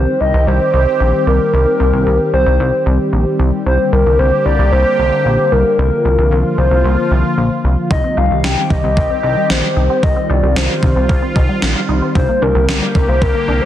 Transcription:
0.00 3.62 D#3 medium
0.00 5.74 G3 medium
0.00 3.62 C4 medium
0.00 3.62 G4 medium
0.00 0.20 C5 loud
0.20 0.33 C2 medium
0.20 0.49 D#5 loud
0.34 0.46 C2 loud
0.47 0.59 C2 loud
0.47 0.74 C5 medium
0.73 0.86 C2 loud
0.73 1.23 C5 loud
1.00 1.13 A#1 medium
1.27 1.39 C2 medium
1.27 2.29 A#4 loud
1.53 1.66 C2 loud
1.80 1.92 C2 medium
1.93 2.05 C2 loud
2.06 2.19 C2 loud
2.33 2.45 C2 medium
2.33 2.83 C5 medium
2.46 2.59 C2 medium
2.60 2.72 C2 loud
2.86 2.98 C2 medium
3.13 3.25 A#1 medium
3.39 3.51 C2 medium
3.66 3.78 C2 loud
3.66 7.87 D3 medium
3.66 7.87 A#3 medium
3.66 5.76 G4 medium
3.66 3.90 C5 loud
3.92 4.05 C2 medium
3.92 4.20 A#4 medium
4.06 4.18 C2 medium
4.19 4.31 C2 loud
4.19 4.45 C5 loud
4.46 4.58 C2 loud
4.46 4.73 D5 loud
4.59 4.71 C2 medium
4.72 4.84 C2 loud
4.72 4.98 C5 loud
4.99 5.11 C2 loud
4.99 5.53 C5 loud
5.25 5.37 A#1 medium
5.52 5.64 C2 medium
5.52 6.60 A#4 loud
5.78 5.91 C2 loud
5.78 7.89 F3 medium
5.78 7.89 F4 medium
6.05 6.17 C2 medium
6.18 6.30 C2 loud
6.31 6.44 C2 loud
6.58 6.70 C2 medium
6.58 7.11 C5 medium
6.71 6.83 C2 medium
6.84 6.97 C2 loud
7.11 7.23 C2 medium
7.37 7.50 A#1 medium
7.64 7.76 C2 medium
7.91 8.03 C2 loud
7.91 12.11 D#3 medium
7.91 8.03 D#3 medium
7.91 13.65 G3 medium
7.91 12.12 C4 medium
7.91 10.01 G4 medium
7.91 8.19 D#5 loud
7.91 kick loud
8.04 8.16 C4 medium
8.17 8.29 C2 loud
8.17 8.29 D#4 medium
8.17 8.46 F5 loud
8.31 8.43 C2 medium
8.31 8.43 G3 medium
8.44 8.56 C2 loud
8.44 8.56 D#3 medium
8.44 8.72 G5 loud
8.44 snare medium
8.57 8.69 G3 medium
8.70 8.83 C2 medium
8.70 8.82 D#3 medium
8.70 9.23 D#5 loud
8.70 kick medium
8.84 8.96 C2 loud
8.84 8.96 C4 medium
8.97 9.09 C2 loud
8.97 kick loud
9.10 9.22 C4 medium
9.23 9.36 C2 loud
9.23 9.36 D#4 medium
9.23 9.52 D#5 medium
9.37 9.49 G3 medium
9.50 9.62 A#1 medium
9.50 9.62 D#3 medium
9.50 10.05 C5 medium
9.50 snare loud
9.63 9.75 G3 medium
9.76 9.89 C2 medium
9.76 9.89 D#4 medium
9.90 10.02 C4 medium
10.03 10.15 C2 loud
10.03 10.15 D#3 medium
10.03 12.13 F4 medium
10.03 10.32 D#5 loud
10.03 kick loud
10.16 10.29 C4 medium
10.30 10.42 C2 loud
10.30 10.42 D#4 medium
10.30 10.58 D5 medium
10.43 10.55 C2 medium
10.43 10.55 G3 medium
10.56 10.68 C2 loud
10.56 10.68 D#3 medium
10.56 11.63 C5 medium
10.56 snare loud
10.69 10.82 G3 medium
10.83 10.95 C2 medium
10.83 10.95 D#3 medium
10.83 kick medium
10.96 11.08 C2 medium
10.96 11.08 C4 medium
11.09 11.21 C2 loud
11.09 kick loud
11.22 11.35 C4 medium
11.36 11.48 C2 loud
11.36 11.48 D#4 medium
11.36 kick loud
11.49 11.61 G3 medium
11.62 11.75 A#1 medium
11.62 11.74 D#3 medium
11.62 snare loud
11.76 11.88 G3 medium
11.89 12.01 C2 medium
11.89 12.01 D#4 medium
12.02 12.14 C4 medium
12.15 12.28 C2 loud
12.15 12.28 D3 medium
12.15 13.65 D3 medium
12.15 13.65 A#3 medium
12.15 13.65 G4 medium
12.15 12.44 C5 loud
12.15 kick loud
12.29 12.41 A#3 medium
12.42 12.54 C2 loud
12.42 12.54 D4 medium
12.42 13.10 A#4 medium
12.55 12.67 C2 medium
12.55 12.67 G3 medium
12.68 12.81 C2 loud
12.68 12.81 D3 medium
12.68 snare loud
12.82 12.94 G3 medium
12.95 13.07 C2 loud
12.95 13.07 D3 medium
12.95 kick medium
13.08 13.20 C2 medium
13.08 13.21 A#3 medium
13.08 13.24 C5 medium
13.22 13.34 C2 loud
13.22 13.63 A#4 medium
13.22 kick loud
13.35 13.47 A#3 medium
13.48 13.60 C2 medium
13.48 13.60 D4 medium
13.62 13.65 G3 medium
13.62 13.65 C5 loud

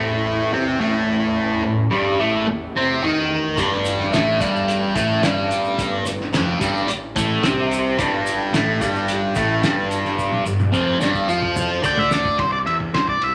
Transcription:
0.00 3.56 A1 medium
0.00 3.62 E2 medium
0.00 0.52 A2 medium
0.00 0.52 A3 loud
0.53 0.80 C3 medium
0.53 0.80 C4 medium
0.80 1.62 A2 medium
0.80 1.63 A3 loud
1.64 1.86 A2 medium
1.91 2.18 G2 medium
1.91 2.18 G3 medium
2.20 2.46 A2 medium
2.20 2.46 A3 medium
2.48 muted distorted electric guitar stroke medium
2.76 3.02 C3 medium
2.76 3.02 C4 medium
3.03 3.57 D#3 medium
3.03 3.57 D#4 loud
3.57 4.09 G1 medium
3.57 12.45 A1 medium
3.57 4.11 G2 medium
3.57 4.12 G3 loud
3.57 kick loud
3.57 closed hi-hat medium
3.57 shaker medium
3.72 snare soft
3.85 closed hi-hat medium
3.85 shaker loud
4.00 snare soft
4.12 4.38 A1 medium
4.12 4.39 A2 medium
4.12 4.39 A3 medium
4.12 snare loud
4.12 closed hi-hat medium
4.12 shaker medium
4.40 4.92 G1 medium
4.40 4.95 G2 medium
4.40 4.95 G3 medium
4.40 kick medium
4.40 closed hi-hat medium
4.40 shaker medium
4.56 shaker soft
4.68 closed hi-hat medium
4.68 shaker medium
4.95 5.21 A1 medium
4.95 5.22 A2 medium
4.95 5.22 A3 medium
4.95 kick loud
4.95 closed hi-hat medium
4.95 shaker medium
5.22 6.01 G1 medium
5.22 6.05 G2 medium
5.22 6.05 G3 loud
5.22 snare loud
5.22 closed hi-hat medium
5.22 shaker medium
5.51 closed hi-hat medium
5.51 shaker medium
5.65 shaker soft
5.79 kick medium
5.79 closed hi-hat medium
5.79 shaker medium
6.05 6.31 G1 medium
6.05 6.28 G2 medium
6.05 closed hi-hat medium
6.05 shaker loud
6.21 snare soft
6.33 6.59 F1 medium
6.33 6.60 F2 medium
6.33 6.60 F3 medium
6.33 snare loud
6.33 closed hi-hat medium
6.33 shaker medium
6.60 6.86 G1 medium
6.60 6.87 G2 medium
6.60 6.87 G3 medium
6.60 kick loud
6.60 closed hi-hat medium
6.60 shaker medium
6.77 shaker soft
6.88 muted distorted electric guitar stroke medium
6.88 muted fingered electric bass stroke soft
6.88 closed hi-hat medium
6.88 shaker medium
7.16 7.42 A1 medium
7.16 7.43 A2 medium
7.16 7.43 A3 medium
7.16 kick loud
7.16 closed hi-hat medium
7.16 shaker medium
7.43 7.94 C2 medium
7.43 7.98 C3 medium
7.43 7.98 C4 medium
7.43 snare loud
7.43 closed hi-hat medium
7.43 shaker medium
7.71 closed hi-hat medium
7.71 shaker medium
7.98 8.50 G1 medium
7.98 8.53 G2 medium
7.98 8.53 G3 loud
7.98 kick loud
7.98 closed hi-hat medium
7.98 shaker medium
8.27 closed hi-hat medium
8.27 shaker loud
8.52 8.79 A1 medium
8.52 8.80 A2 medium
8.52 8.81 A3 medium
8.52 snare loud
8.52 closed hi-hat medium
8.52 shaker medium
8.81 9.33 G1 medium
8.81 9.35 G2 medium
8.81 9.36 G3 medium
8.81 kick loud
8.81 closed hi-hat medium
8.81 shaker medium
8.95 shaker soft
9.08 closed hi-hat medium
9.08 shaker medium
9.35 9.62 A1 medium
9.35 9.63 A2 medium
9.35 9.63 A3 medium
9.35 kick loud
9.35 closed hi-hat medium
9.35 shaker medium
9.63 10.42 G1 medium
9.63 10.44 G2 medium
9.63 10.46 G3 medium
9.63 snare loud
9.63 closed hi-hat medium
9.63 shaker medium
9.91 closed hi-hat medium
9.91 shaker medium
10.05 snare soft
10.05 shaker soft
10.19 kick medium
10.19 shaker medium
10.32 high tom soft
10.45 10.72 G1 medium
10.45 10.68 G2 medium
10.45 shaker medium
10.60 high tom soft
10.60 shaker soft
10.72 10.99 F1 medium
10.72 11.00 F2 medium
10.72 11.00 F3 medium
10.72 kick medium
10.72 shaker medium
11.00 11.26 G1 medium
11.00 11.27 G2 medium
11.00 11.28 G3 medium
11.00 snare medium
11.00 shaker medium
11.15 kick medium
11.15 shaker soft
11.28 11.79 F2 medium
11.28 11.82 F3 medium
11.28 11.83 F4 medium
11.28 shaker medium
11.42 kick medium
11.56 mid tom medium
11.56 shaker loud
11.83 12.35 D2 medium
11.83 12.38 D3 medium
11.83 12.38 D4 loud
11.83 11.99 G5 medium
11.83 kick medium
11.83 shaker medium
11.97 12.12 E5 medium
11.97 floor tom medium
12.11 12.39 D5 medium
12.11 snare medium
12.11 shaker medium
12.25 kick medium
12.39 12.63 C2 medium
12.39 12.52 C5 medium
12.39 kick medium
12.39 ride medium
12.52 12.57 D5 medium
12.66 12.90 E2 medium
12.66 12.74 E5 medium
12.66 ride medium
12.80 kick soft
12.93 13.17 C2 medium
12.93 13.09 C5 medium
12.93 snare medium
12.93 ride medium
13.08 13.23 D5 medium
13.08 kick medium
13.21 13.35 C2 medium
13.21 13.35 E5 medium
13.21 ride soft

